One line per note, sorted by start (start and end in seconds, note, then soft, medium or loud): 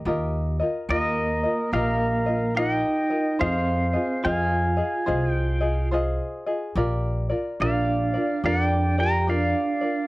0.05 0.60 D#2 medium
0.05 0.59 F4 medium
0.05 0.59 G4 medium
0.05 0.60 A#4 medium
0.05 0.58 D#5 medium
0.60 0.90 F4 soft
0.60 0.90 A#4 medium
0.60 0.89 D#5 medium
0.89 1.43 D#2 medium
0.89 1.69 A#3 medium
0.89 1.43 F4 medium
0.89 1.43 G4 medium
0.89 1.44 A#4 medium
0.89 1.70 A#4 medium
0.89 1.73 D#5 medium
0.89 1.42 D#5 medium
1.43 1.73 F4 soft
1.43 1.73 A#4 medium
1.43 1.73 D#5 medium
1.72 2.82 A#1 medium
1.72 2.52 A#3 medium
1.72 2.27 F4 medium
1.72 2.26 G4 medium
1.72 2.26 A#4 medium
1.72 2.54 A#4 medium
1.72 2.25 D#5 medium
1.72 2.53 F5 medium
2.26 2.56 F4 soft
2.26 2.56 A#4 soft
2.26 2.57 D#5 medium
2.55 3.36 D#4 medium
2.55 3.10 F4 medium
2.55 3.10 G4 medium
2.55 3.09 A#4 medium
2.55 3.09 D#5 medium
2.55 3.40 G5 loud
2.59 3.38 D#5 medium
3.10 3.38 F4 soft
3.10 3.40 A#4 soft
3.10 3.39 D#5 medium
3.39 3.95 F2 medium
3.39 4.20 C4 medium
3.39 3.94 F4 medium
3.39 3.93 G#4 medium
3.39 3.93 C5 medium
3.39 3.92 D#5 medium
3.39 4.26 F5 medium
3.43 4.22 C5 medium
3.93 4.23 F4 soft
3.93 4.24 G#4 soft
3.93 4.24 D#5 medium
4.23 4.79 F2 medium
4.23 5.87 F4 medium
4.23 4.77 F4 medium
4.23 4.77 G#4 medium
4.23 4.77 C5 medium
4.23 4.76 D#5 medium
4.23 5.30 G#5 medium
4.27 5.89 F5 medium
4.77 5.05 F4 soft
4.77 5.06 G#4 soft
4.77 5.06 D#5 medium
5.06 6.17 C2 medium
5.06 5.61 F4 medium
5.06 5.60 G#4 medium
5.06 5.61 C5 medium
5.06 5.59 D#5 medium
5.30 5.88 G5 medium
5.60 5.91 F4 soft
5.60 5.92 G#4 medium
5.60 5.91 D#5 medium
5.91 6.46 F4 medium
5.91 6.46 G#4 medium
5.91 6.45 C5 medium
5.91 6.45 D#5 medium
6.46 6.75 F4 soft
6.46 6.77 G#4 medium
6.46 6.76 D#5 medium
6.75 7.30 A#1 loud
6.75 7.30 F4 medium
6.75 7.30 G4 medium
6.75 7.29 A#4 medium
6.75 7.28 D5 loud
7.29 7.60 F4 medium
7.29 7.60 A#4 soft
7.29 7.60 D5 medium
7.60 8.15 A#1 medium
7.60 8.40 D4 medium
7.60 8.14 F4 medium
7.60 8.14 G4 medium
7.60 8.14 A#4 medium
7.60 8.12 D5 medium
7.60 8.41 D5 medium
7.60 8.45 F5 medium
8.14 8.43 F4 soft
8.14 8.44 A#4 soft
8.14 8.44 D5 medium
8.44 9.53 F2 medium
8.44 8.93 D4 medium
8.44 8.98 F4 medium
8.44 8.98 G4 medium
8.44 8.98 A#4 medium
8.44 8.97 D5 medium
8.44 8.95 D5 medium
8.44 8.65 F#5 medium
8.65 8.99 G5 medium
8.98 9.27 F4 soft
8.98 9.26 G4 medium
8.98 9.28 A#4 medium
8.98 9.28 D5 medium
8.98 9.27 G5 medium
8.98 9.30 A#5 loud
9.27 10.07 D4 medium
9.27 9.82 F4 medium
9.27 9.81 G4 medium
9.27 9.81 A#4 medium
9.27 9.80 D5 medium
9.27 10.07 D5 medium
9.27 10.07 F5 loud
9.81 10.07 F4 soft
9.81 10.07 A#4 medium
9.81 10.07 D5 soft